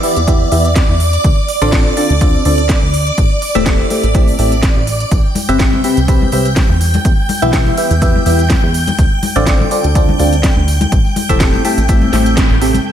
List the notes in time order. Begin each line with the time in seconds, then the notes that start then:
Already playing: D5 D6
0.03 E3 B3 E4 G4 E5, open hi-hat
0.16 E2, closed hi-hat
0.28 E3 B3 E4 G4 E5, kick, closed hi-hat
0.52 E2 E3 B3 E4 G4 E5, open hi-hat
0.65 closed hi-hat
0.75 kick, snare, closed hi-hat
0.89 E2
1.00 open hi-hat
1.13 closed hi-hat
1.24 D2, kick, closed hi-hat
1.48 open hi-hat
1.62 A1 D3 C4 F4 A4 D5, closed hi-hat
1.72 D3 C4 F4 A4 D5, kick, snare, closed hi-hat
1.97 D3 C4 F4 A4 D5, open hi-hat
2.10 D2, closed hi-hat
2.21 D3 C4 F4 A4 D5, kick, closed hi-hat
2.45 D2 D3 C4 F4 A4 D5, open hi-hat
2.58 closed hi-hat
2.69 kick, snare, closed hi-hat
2.83 D2
2.94 open hi-hat
3.07 closed hi-hat
3.18 A1, kick, closed hi-hat
3.42 open hi-hat
3.55 E1 A2 C4 G4 A4 E5, closed hi-hat
3.66 A2 C4 G4 A4, kick, snare, closed hi-hat
3.90 A2 C4 G4 A4 E5, open hi-hat
4.04 A1, closed hi-hat
4.15 A2 C4 G4 A4 E5, kick, closed hi-hat
4.28 open hi-hat
4.39 A1 A2 C4 G4 A4 E5, open hi-hat
4.52 closed hi-hat
4.63 kick, snare, closed hi-hat
4.76 A1
4.87 open hi-hat
5.00 closed hi-hat
5.11 C2 G5 G6, kick, closed hi-hat, tambourine
5.35 open hi-hat, tambourine, high conga
5.49 G1 C3 C4 G4 B4 E5, closed hi-hat, tambourine
5.59 C3 C4 G4 B4 E5, kick, snare, closed hi-hat, tambourine
5.73 high conga
5.84 C3 C4 G4 B4 E5, open hi-hat, tambourine
5.97 C2, closed hi-hat, tambourine
6.08 C3 C4 G4 B4 E5, kick, closed hi-hat, tambourine
6.22 high conga
6.32 C2 C3 C4 G4 B4 E5, open hi-hat, tambourine
6.46 closed hi-hat, tambourine
6.56 kick, snare, closed hi-hat, tambourine, high conga
6.70 E2
6.81 open hi-hat, tambourine
6.93 closed hi-hat, tambourine, high conga
7.05 E2, kick, closed hi-hat, tambourine
7.29 open hi-hat, tambourine, high conga
7.42 B1 E3 B3 E4 G4 E5, closed hi-hat, tambourine
7.53 E3 B3 E4 G4 E5, kick, snare, closed hi-hat, tambourine
7.66 tambourine, high conga
7.77 E3 B3 E4 G4 E5, open hi-hat, tambourine
7.91 E2, closed hi-hat, tambourine
8.02 E3 B3 E4 G4 E5, kick, closed hi-hat, tambourine
8.16 high conga
8.26 E2 E3 B3 E4 G4 E5, open hi-hat, tambourine
8.39 closed hi-hat, tambourine
8.50 kick, snare, closed hi-hat, tambourine, high conga
8.63 E2
8.74 open hi-hat, tambourine
8.87 closed hi-hat, tambourine, high conga
8.99 D2, kick, closed hi-hat, tambourine
9.23 open hi-hat, tambourine, high conga
9.36 A1 D3 C4 F4 A4 D5, closed hi-hat, tambourine
9.46 kick, snare, closed hi-hat, tambourine
9.60 high conga
9.71 D3 C4 F4 A4 D5, open hi-hat, tambourine
9.84 D2, closed hi-hat, tambourine
9.95 D3 C4 F4 A4 D5, kick, closed hi-hat, tambourine
10.09 high conga
10.19 D2 D3 C4 F4 A4 D5, open hi-hat, tambourine
10.33 closed hi-hat, tambourine
10.43 kick, snare, closed hi-hat, tambourine, high conga
10.57 D2
10.68 open hi-hat, tambourine
10.81 closed hi-hat, tambourine, high conga
10.92 A1, kick, closed hi-hat, tambourine
11.05 tambourine
11.16 open hi-hat, tambourine, high conga
11.29 E1 A2 C4 G4 A4 E5, kick, closed hi-hat
11.40 A2 C4 G4 A4 E5, kick, snare, closed hi-hat, tambourine
11.53 tambourine, high conga
11.65 A2 C4 G4 A4 E5, open hi-hat, tambourine
11.78 A1, closed hi-hat, tambourine
11.88 A2 C4 G4 A4 E5, kick, closed hi-hat, tambourine
12.01 tambourine, high conga
12.13 A1 A2 C4 G4 A4 E5, snare, open hi-hat, tambourine
12.26 closed hi-hat, tambourine
12.37 kick, snare, closed hi-hat, tambourine, high conga
12.50 A1, tambourine
12.61 C3 C4 G4 A4 E5, open hi-hat, tambourine
12.74 closed hi-hat, tambourine, high conga
12.86 E5 E6